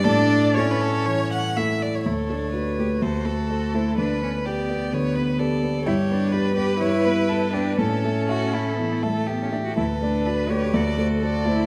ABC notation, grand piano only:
X:1
M:4/4
L:1/8
Q:1/4=124
K:D
V:1 name="Grand piano"
A,,2 [A,EA]2 E,2 [A,EA]2 | D,, [A,A] [FA] [A,A] D,, [A,=c] [Ac] [A,c] | D,, [B,B] [GB] [B,B] D, [B,B] [GB] [B,B] | G,, [B,B] [GB] [B,B] G,, [B,B] [EB] [B,B] |
A,, [A,e] [Ee] [A,e] E, [A,e] [Ee] [A,e] | D,, [A,d] [Fd] [A,d] D,, [A,=c] [Ac] [A,c] |]